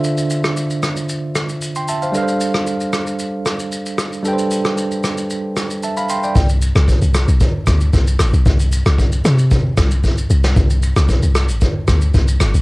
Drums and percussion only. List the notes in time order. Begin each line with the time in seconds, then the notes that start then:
0.04 shaker
0.17 shaker
0.30 shaker
0.44 cross-stick, shaker
0.57 shaker
0.70 shaker
0.83 cross-stick, shaker
0.97 shaker
1.09 shaker
1.35 cross-stick, shaker
1.49 shaker
1.62 shaker
1.76 shaker
1.88 shaker
2.02 shaker
2.14 shaker
2.28 shaker
2.41 shaker
2.54 cross-stick, shaker
2.67 shaker
2.81 shaker
2.93 cross-stick, shaker
3.07 shaker
3.19 shaker
3.46 cross-stick, shaker
3.60 shaker
3.72 shaker
3.86 shaker
3.98 cross-stick, shaker
4.13 shaker
4.25 shaker
4.39 shaker
4.51 shaker
4.65 cross-stick, shaker
4.78 shaker
4.91 shaker
5.04 cross-stick, shaker
5.18 shaker
5.30 shaker
5.56 cross-stick, shaker
5.70 shaker
5.83 shaker
5.97 shaker
6.09 shaker
6.23 shaker
6.36 kick, shaker
6.49 shaker
6.62 shaker
6.76 cross-stick, shaker
6.88 kick, shaker
7.02 shaker
7.14 cross-stick, shaker
7.28 shaker
7.41 kick, shaker
7.67 kick, cross-stick, shaker
7.81 shaker
7.93 kick, shaker
8.07 shaker
8.19 cross-stick, shaker
8.34 shaker
8.46 kick, shaker
8.60 shaker
8.72 shaker
8.86 cross-stick, shaker
8.98 kick, shaker
9.12 shaker
9.25 cross-stick, shaker
9.39 shaker
9.51 kick, shaker
9.78 kick, cross-stick, snare, shaker
9.91 shaker
10.04 kick, shaker
10.18 shaker
10.30 shaker
10.44 snare, shaker
10.56 kick, shaker
10.70 shaker
10.83 shaker
10.96 cross-stick, shaker
11.09 kick, shaker
11.22 shaker
11.35 cross-stick, shaker
11.49 shaker
11.61 kick, shaker
11.88 kick, cross-stick, shaker
12.02 shaker
12.14 kick, shaker
12.28 shaker
12.40 cross-stick, shaker
12.54 shaker